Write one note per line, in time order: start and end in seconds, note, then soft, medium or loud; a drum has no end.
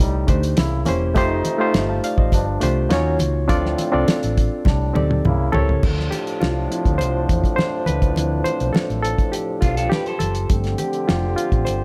0.00 0.24 C2 loud
0.00 0.28 A2 medium
0.00 0.28 G3 medium
0.00 0.28 D#4 medium
0.00 closed hi-hat loud
0.27 0.53 D2 medium
0.27 0.57 A3 medium
0.27 0.57 D4 medium
0.27 0.57 D#4 medium
0.27 0.58 G4 medium
0.27 0.58 C5 medium
0.27 kick medium
0.27 closed hi-hat medium
0.27 muted conga soft
0.27 low conga medium
0.43 closed hi-hat soft
0.57 0.82 C2 loud
0.57 0.86 C#3 medium
0.57 0.86 A#3 medium
0.57 0.86 E4 medium
0.57 snare loud
0.57 closed hi-hat medium
0.57 high conga medium
0.85 1.16 E1 medium
0.85 1.13 A#3 medium
0.85 1.14 C#4 medium
0.85 1.14 E4 medium
0.85 1.14 G4 medium
0.85 1.15 C5 loud
0.85 closed hi-hat medium
0.85 high conga medium
1.15 1.40 F1 medium
1.15 2.02 C3 medium
1.15 1.56 A3 loud
1.15 2.02 A3 medium
1.15 1.56 D#4 medium
1.15 2.02 D#4 medium
1.15 1.57 F4 medium
1.15 1.57 G4 medium
1.15 1.57 C5 loud
1.15 kick loud
1.15 closed hi-hat medium
1.15 muted conga soft
1.45 closed hi-hat medium
1.45 muted conga medium
1.58 2.32 A3 medium
1.58 2.32 D#4 medium
1.58 2.33 F4 medium
1.58 2.33 G4 medium
1.58 1.75 C5 loud
1.74 1.99 G1 medium
1.74 snare loud
1.74 closed hi-hat medium
1.74 high conga medium
1.89 2.03 F5 medium
1.89 2.03 A5 medium
2.04 2.18 D5 medium
2.04 2.18 F5 medium
2.04 closed hi-hat medium
2.18 2.33 A1 medium
2.18 2.46 C5 medium
2.18 2.46 D#5 medium
2.18 kick loud
2.32 2.57 G1 loud
2.32 2.62 G2 medium
2.32 2.62 F3 medium
2.32 2.61 D4 medium
2.32 kick medium
2.32 closed hi-hat medium
2.32 muted conga soft
2.60 2.86 C2 medium
2.60 2.90 A3 medium
2.60 2.91 D4 medium
2.60 2.89 F4 medium
2.60 2.91 G4 medium
2.60 2.92 C5 medium
2.60 closed hi-hat medium
2.60 muted conga soft
2.89 3.15 D#2 loud
2.89 3.20 A#2 medium
2.89 3.20 F#3 medium
2.89 3.44 A#3 medium
2.89 3.20 C#4 medium
2.89 3.44 D#4 medium
2.89 3.45 F4 medium
2.89 3.45 F#4 medium
2.89 3.45 C#5 loud
2.89 snare loud
2.89 closed hi-hat medium
2.89 high conga medium
3.19 3.50 C#2 medium
3.19 closed hi-hat medium
3.19 high conga medium
3.48 3.74 D2 medium
3.48 4.35 A2 medium
3.48 4.35 F3 medium
3.48 3.89 C4 loud
3.48 4.35 C4 medium
3.48 3.89 D4 loud
3.48 3.90 F4 medium
3.48 3.90 A4 loud
3.48 3.90 D5 loud
3.48 kick loud
3.48 closed hi-hat loud
3.48 muted conga soft
3.65 snare soft
3.78 closed hi-hat medium
3.78 muted conga medium
3.92 4.06 C2 loud
3.92 4.65 C4 medium
3.92 4.66 D4 medium
3.92 4.66 F4 medium
3.92 4.66 A4 medium
3.92 4.67 D5 medium
4.08 snare loud
4.08 closed hi-hat loud
4.08 high conga medium
4.23 4.47 A1 medium
4.23 closed hi-hat soft
4.38 kick medium
4.38 closed hi-hat medium
4.65 4.90 C2 medium
4.65 4.95 A2 medium
4.65 4.95 G3 medium
4.65 4.95 D4 medium
4.65 kick medium
4.65 snare medium
4.65 muted conga soft
4.65 low conga medium
4.93 5.20 D2 medium
4.93 5.24 C4 medium
4.93 5.24 D#4 medium
4.93 5.24 G4 medium
4.93 5.25 A4 medium
4.93 5.25 D5 medium
4.93 high tom medium
4.93 muted conga soft
4.93 low conga medium
5.11 high tom medium
5.24 5.49 C2 loud
5.24 5.53 C#3 medium
5.24 5.53 A#3 medium
5.24 5.53 E4 medium
5.24 mid tom medium
5.24 high conga medium
5.52 5.79 C#2 medium
5.52 5.80 C4 medium
5.52 5.80 E4 medium
5.52 5.81 G4 medium
5.52 6.13 A4 loud
5.52 5.81 A#4 medium
5.52 5.81 C#5 medium
5.52 floor tom loud
5.52 high conga medium
5.69 floor tom medium
5.83 6.08 D2 medium
5.83 10.17 A2 medium
5.83 10.17 F3 medium
5.83 10.17 D4 medium
5.83 kick loud
5.83 crash medium
5.83 muted conga soft
6.00 snare soft
6.11 6.41 G4 medium
6.11 closed hi-hat medium
6.11 muted conga soft
6.27 closed hi-hat soft
6.40 6.66 C2 medium
6.40 7.01 F4 medium
6.40 snare loud
6.40 high conga medium
6.70 8.15 F3 medium
6.70 8.16 C4 soft
6.70 8.17 E4 medium
6.70 closed hi-hat medium
6.85 6.98 D2 medium
6.85 kick loud
6.85 closed hi-hat soft
6.98 7.24 C2 medium
6.98 7.55 C5 loud
6.98 closed hi-hat medium
6.98 muted conga soft
7.29 7.41 E2 medium
7.29 kick medium
7.29 closed hi-hat medium
7.29 muted conga soft
7.44 kick medium
7.44 closed hi-hat soft
7.56 7.87 C5 loud
7.56 snare loud
7.56 high conga medium
7.86 8.12 C#2 medium
7.86 8.41 B4 medium
7.86 closed hi-hat medium
7.86 high conga medium
8.02 kick medium
8.02 closed hi-hat soft
8.16 8.41 D2 medium
8.16 10.46 F3 soft
8.16 10.46 C4 soft
8.16 10.47 E4 medium
8.16 closed hi-hat medium
8.16 muted conga soft
8.44 8.72 C5 medium
8.44 closed hi-hat medium
8.44 muted conga medium
8.60 8.73 B1 medium
8.60 closed hi-hat soft
8.73 9.01 A4 medium
8.73 snare loud
8.73 high conga medium
8.90 9.14 A1 medium
8.90 closed hi-hat soft
9.02 9.33 A4 loud
9.02 closed hi-hat medium
9.18 kick loud
9.18 closed hi-hat soft
9.32 9.63 G4 medium
9.32 closed hi-hat medium
9.61 9.87 B1 medium
9.61 9.77 D4 medium
9.61 9.92 F4 medium
9.61 9.76 F4 medium
9.61 kick medium
9.61 closed hi-hat medium
9.61 muted conga soft
9.61 low conga medium
9.77 9.91 F4 medium
9.77 9.91 A4 medium
9.77 closed hi-hat medium
9.89 10.21 G4 medium
9.89 10.06 G4 medium
9.89 10.06 B4 medium
9.89 snare loud
9.89 high conga medium
10.06 10.48 A4 medium
10.06 10.48 C5 medium
10.06 closed hi-hat soft
10.19 10.45 F#1 medium
10.19 10.80 A4 medium
10.19 closed hi-hat medium
10.19 high conga medium
10.35 closed hi-hat soft
10.50 10.74 G1 medium
10.50 11.84 D3 medium
10.50 10.89 F3 soft
10.50 10.89 A3 soft
10.50 11.84 C4 medium
10.50 10.89 C4 medium
10.50 11.84 G4 medium
10.50 kick loud
10.50 closed hi-hat medium
10.50 muted conga soft
10.64 snare soft
10.64 closed hi-hat soft
10.78 11.06 G4 medium
10.78 closed hi-hat medium
10.78 muted conga medium
10.93 closed hi-hat soft
11.08 11.33 F1 medium
11.08 11.35 F4 medium
11.08 snare loud
11.08 high conga medium
11.36 11.67 F4 medium
11.36 closed hi-hat medium
11.52 11.64 A1 medium
11.52 kick medium
11.52 closed hi-hat soft
11.65 11.84 G1 medium
11.65 11.84 C5 medium
11.65 closed hi-hat medium
11.65 muted conga soft